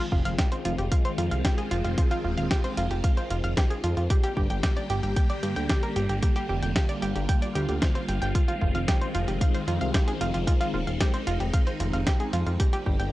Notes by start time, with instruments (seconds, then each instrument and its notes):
Already playing: string machine D#3 G#3 C4 F4
0.12 analog synth bass F1, synth arpeggio sound F4, kick
0.25 analog synth bass F1, synth arpeggio sound F5, closed hi-hat
0.39 synth arpeggio sound G4, kick, snare, closed hi-hat
0.52 synth arpeggio sound C5, closed hi-hat
0.65 analog synth bass F1, synth arpeggio sound F4, closed hi-hat
0.78 analog synth bass F1, synth arpeggio sound G4, closed hi-hat
0.92 synth arpeggio sound F5, kick, closed hi-hat
1.05 synth arpeggio sound C5, closed hi-hat
1.18 analog synth bass F2, synth arpeggio sound F4, closed hi-hat
1.31 analog synth bass C2, synth arpeggio sound F5, closed hi-hat
1.45 synth arpeggio sound G4, kick, snare, closed hi-hat
1.58 synth arpeggio sound G#4, closed hi-hat
1.71 analog synth bass F1, synth arpeggio sound F4, closed hi-hat
1.84 analog synth bass F1, synth arpeggio sound F4, closed hi-hat
1.98 synth arpeggio sound F4, kick, closed hi-hat
2.11 synth arpeggio sound F4, closed hi-hat
2.24 analog synth bass D#1, synth arpeggio sound F4
2.38 analog synth bass D#1, synth arpeggio sound F5, closed hi-hat
2.51 synth arpeggio sound G4, kick, snare, closed hi-hat
2.64 synth arpeggio sound C5, closed hi-hat
2.77 analog synth bass F1, synth arpeggio sound F4, closed hi-hat
2.91 analog synth bass F1, synth arpeggio sound G4, closed hi-hat
3.04 synth arpeggio sound F5, kick, closed hi-hat
3.17 synth arpeggio sound C5, closed hi-hat
3.30 analog synth bass F1, synth arpeggio sound F4, closed hi-hat
3.44 analog synth bass F1, synth arpeggio sound F5, closed hi-hat
3.57 synth arpeggio sound G4, kick, snare, closed hi-hat
3.70 synth arpeggio sound G#4, closed hi-hat
3.84 analog synth bass F2, synth arpeggio sound F4, closed hi-hat
3.97 analog synth bass F2, synth arpeggio sound F4, closed hi-hat
4.10 string machine D3 G3 A#3 G4, synth arpeggio sound G4, kick, closed hi-hat
4.23 synth arpeggio sound G4, closed hi-hat
4.37 analog synth bass G1, synth arpeggio sound G4, kick
4.50 analog synth bass G1, synth arpeggio sound G5, closed hi-hat
4.63 synth arpeggio sound G4, kick, snare, closed hi-hat
4.77 synth arpeggio sound D5, closed hi-hat
4.90 analog synth bass G1, synth arpeggio sound G4, closed hi-hat
5.03 analog synth bass G1, synth arpeggio sound G4, closed hi-hat
5.16 synth arpeggio sound G5, kick, closed hi-hat
5.30 synth arpeggio sound D5, closed hi-hat
5.43 analog synth bass G2, synth arpeggio sound G4, closed hi-hat
5.56 analog synth bass D2, synth arpeggio sound G5, closed hi-hat
5.69 synth arpeggio sound G4, kick, snare, closed hi-hat
5.83 synth arpeggio sound A#4, closed hi-hat
5.96 analog synth bass G1, synth arpeggio sound G4, closed hi-hat
6.09 analog synth bass G1, synth arpeggio sound G4, closed hi-hat
6.23 string machine F4, synth arpeggio sound G4, kick, closed hi-hat
6.36 synth arpeggio sound G4, closed hi-hat
6.49 analog synth bass F1, synth arpeggio sound G4
6.63 analog synth bass F1, synth arpeggio sound G5, closed hi-hat
6.76 synth arpeggio sound G4, kick, snare, closed hi-hat
6.89 synth arpeggio sound D5, closed hi-hat
7.02 analog synth bass G1, synth arpeggio sound G4, closed hi-hat
7.15 analog synth bass G1, synth arpeggio sound G4, closed hi-hat
7.29 synth arpeggio sound G5, kick, closed hi-hat
7.42 synth arpeggio sound D5, closed hi-hat
7.55 analog synth bass D2, synth arpeggio sound G4, closed hi-hat
7.69 analog synth bass D2, synth arpeggio sound G3, closed hi-hat
7.82 synth arpeggio sound C5, kick, snare, closed hi-hat
7.95 synth arpeggio sound C5, closed hi-hat
8.08 analog synth bass G1, synth arpeggio sound G5, closed hi-hat
8.22 analog synth bass G1, synth arpeggio sound G5, closed hi-hat
8.35 string machine D#3 G#3 C4, synth arpeggio sound F4, kick, closed hi-hat
8.48 synth arpeggio sound F4, closed hi-hat
8.61 analog synth bass F1, synth arpeggio sound F4, kick
8.75 analog synth bass F1, synth arpeggio sound F5, closed hi-hat
8.88 synth arpeggio sound G4, kick, snare, closed hi-hat
9.01 synth arpeggio sound C5, closed hi-hat
9.15 analog synth bass F1, synth arpeggio sound F4, closed hi-hat
9.28 analog synth bass F1, synth arpeggio sound G4, closed hi-hat
9.41 synth arpeggio sound F5, kick, closed hi-hat
9.54 synth arpeggio sound C5, closed hi-hat
9.68 analog synth bass F2, synth arpeggio sound F4, closed hi-hat
9.81 analog synth bass C2, synth arpeggio sound F5, closed hi-hat
9.94 synth arpeggio sound G4, kick, snare, closed hi-hat
10.08 synth arpeggio sound G#4, closed hi-hat
10.21 analog synth bass F1, synth arpeggio sound F4, closed hi-hat
10.34 analog synth bass F1, synth arpeggio sound F4, closed hi-hat
10.47 string machine D#4, synth arpeggio sound F4, kick, closed hi-hat
10.61 synth arpeggio sound F4, closed hi-hat
10.74 analog synth bass D#1, synth arpeggio sound F4
10.87 analog synth bass D#1, synth arpeggio sound F5, closed hi-hat
11.00 synth arpeggio sound G4, kick, snare, closed hi-hat
11.14 synth arpeggio sound C5, closed hi-hat
11.27 analog synth bass F1, synth arpeggio sound F4, closed hi-hat
11.40 analog synth bass F1, synth arpeggio sound G4, closed hi-hat
11.54 synth arpeggio sound F5, kick, closed hi-hat
11.67 synth arpeggio sound C5, closed hi-hat
11.80 analog synth bass F1, synth arpeggio sound F4, closed hi-hat
11.93 analog synth bass F1, synth arpeggio sound F5, closed hi-hat
12.07 synth arpeggio sound G4, kick, snare, closed hi-hat
12.20 synth arpeggio sound G#4, closed hi-hat
12.33 analog synth bass F2, synth arpeggio sound F4, closed hi-hat
12.46 analog synth bass F2, synth arpeggio sound F4, closed hi-hat
12.60 string machine D3 G3 A#3 G4, synth arpeggio sound G4, kick, closed hi-hat
12.73 synth arpeggio sound G4, closed hi-hat
12.86 analog synth bass G1, synth arpeggio sound G4, kick
13.00 analog synth bass G1, synth arpeggio sound G5, closed hi-hat